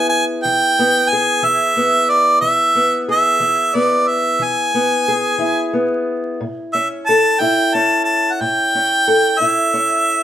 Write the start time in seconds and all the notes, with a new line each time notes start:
Already playing: B3 E4 G#4
0.09 G#5
0.43 E3 G5
0.79 B3
1.10 G#4 G#5
1.43 E3 E4 E5
1.77 B3
2.09 D5
2.41 E3 E5
2.75 B3
3.08 G#4 E5
3.40 E3 E4
3.75 B3 D5
4.08 E5
4.39 E3
4.44 G#5
4.75 B3
5.08 G#4
5.38 E3 E4
5.73 B3
6.41 A2
6.73 C#4 E5
7.06 A4 A5
7.40 A2 E4 G5
7.74 C#4 A5
8.04 A5
8.33 F#5
8.41 A2 G5
8.75 C#4
9.08 A4
9.39 A2 E4 E5
9.74 C#4